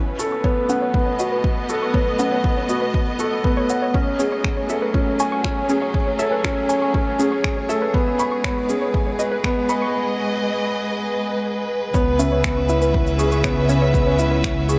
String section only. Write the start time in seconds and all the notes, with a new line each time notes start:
Already playing: B2 C#4 B4
0.33 A3 B3
0.95 D#5
3.95 F#3
4.24 G#4
4.47 C#4
7.94 G#3
8.61 B4
9.67 D#5
11.94 C#3
12.38 C#4 E5